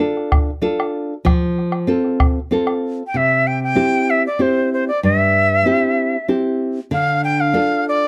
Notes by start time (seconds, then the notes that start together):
Already playing: D4
0.00 F4 A4
0.17 bombo rim
0.32 bombo rim, bombo low
0.62 D4 F4 A4
0.80 bombo rim
1.25 F3, bombo rim, bombo low
1.58 bombo rim
1.72 bombo rim
1.87 C4 F4 A4
2.05 bombo rim
2.20 bombo rim, bombo low
2.51 C4 F4 A4, bombo rim
2.67 bombo rim
3.07 G5
3.14 C3 E5
3.47 G5
3.63 G5
3.75 C4 E4 G4
4.10 E5
4.27 D5
4.39 C4 E4 G4 C5
4.73 C5
4.88 D5
5.03 G2 E5
5.65 C4 E4 G4
6.28 C4 E4 G4
6.91 D3 F5
7.24 G5
7.40 F5
7.53 D4 F4 A4
7.88 D5